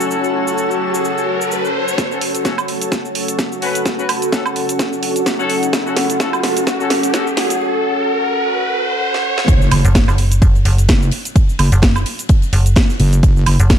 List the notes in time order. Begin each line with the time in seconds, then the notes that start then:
Already playing: C#4 F#4 A4 C#5 F#5 A5, riser
0.01 cabasa
0.11 cabasa
0.24 cabasa
0.47 cabasa
0.58 cabasa
0.71 cabasa
0.94 cabasa
1.05 cabasa
1.18 cabasa
1.41 cabasa
1.52 cabasa
1.65 cabasa
1.88 cabasa
1.98 C#4 F#4 A4 F#5, kick, snare, closed hi-hat, riser, cabasa
2.11 C#4 F#4 A4, cabasa
2.21 open hi-hat
2.35 closed hi-hat, cabasa
2.45 C#4 F#4 A4, kick, snare, closed hi-hat, cabasa
2.58 cabasa, high woodblock
2.68 open hi-hat
2.81 closed hi-hat, cabasa
2.92 kick, snare, closed hi-hat, cabasa
3.05 cabasa
3.15 open hi-hat
3.28 closed hi-hat, cabasa
3.39 kick, snare, closed hi-hat, cabasa
3.52 cabasa
3.62 C#4 F#4 B4, open hi-hat
3.75 closed hi-hat, cabasa
3.85 kick, snare, closed hi-hat, cabasa
3.99 C#4 F#4 B4, cabasa
4.09 open hi-hat, high woodblock
4.22 closed hi-hat, cabasa
4.32 C#4 F#4 A4, kick, snare, closed hi-hat, cabasa
4.46 cabasa, high woodblock
4.56 open hi-hat
4.69 closed hi-hat, cabasa
4.79 kick, snare, closed hi-hat, cabasa
4.93 cabasa
5.03 open hi-hat
5.16 closed hi-hat, cabasa
5.26 kick, snare, closed hi-hat, cabasa
5.39 C#4 F#4 A4, cabasa
5.50 open hi-hat
5.63 closed hi-hat, cabasa
5.73 kick, snare, closed hi-hat, cabasa
5.86 C#4 F#4 A4, cabasa
5.96 snare, open hi-hat
6.10 closed hi-hat, cabasa
6.20 C#4 F#4 A4, kick, snare, closed hi-hat, cabasa
6.33 cabasa, high woodblock
6.43 snare, open hi-hat
6.57 closed hi-hat, cabasa
6.67 kick, snare, closed hi-hat, cabasa
6.80 C#4 F#4 A4, cabasa
6.90 snare, open hi-hat
7.03 closed hi-hat, cabasa
7.14 C#4 F#4 A4, kick, snare, closed hi-hat, cabasa
7.27 cabasa
7.37 snare, open hi-hat
7.50 closed hi-hat, cabasa
9.14 snare
9.25 mid tom
9.38 snare
9.48 F#1 A3 C#4 F#4 C#5, kick, closed hi-hat, ride, impact, cabasa
9.62 cabasa
9.71 F#1, open hi-hat, ride, high woodblock
9.85 F#1, closed hi-hat, cabasa
9.95 kick, snare, closed hi-hat, ride, cabasa
10.08 F#1, snare, cabasa, high woodblock
10.18 open hi-hat, ride
10.32 closed hi-hat, cabasa
10.42 F#1, kick, closed hi-hat, ride, cabasa
10.55 ride, cabasa
10.65 F#1, snare, open hi-hat, ride
10.78 closed hi-hat, cabasa
10.88 F#1, kick, snare, closed hi-hat, ride, cabasa
11.02 cabasa
11.11 open hi-hat, ride
11.25 closed hi-hat, cabasa
11.36 kick, closed hi-hat, ride, cabasa
11.49 cabasa
11.59 F#1, open hi-hat, ride, high woodblock
11.72 F#1, closed hi-hat, ride, cabasa
11.82 kick, snare, closed hi-hat, ride, cabasa
11.95 ride, cabasa, high woodblock
12.06 open hi-hat, ride
12.19 closed hi-hat, cabasa
12.29 kick, closed hi-hat, ride, cabasa
12.42 ride, cabasa
12.53 F#1, open hi-hat, ride
12.66 closed hi-hat, cabasa
12.76 kick, snare, closed hi-hat, ride, cabasa
12.89 snare, cabasa
13.00 F#1, open hi-hat, ride
13.13 closed hi-hat, cabasa
13.23 F#1, kick, closed hi-hat, ride, cabasa
13.37 cabasa
13.46 F#1, open hi-hat, ride, high woodblock
13.60 F#1, closed hi-hat, cabasa
13.70 kick, snare, closed hi-hat, ride, cabasa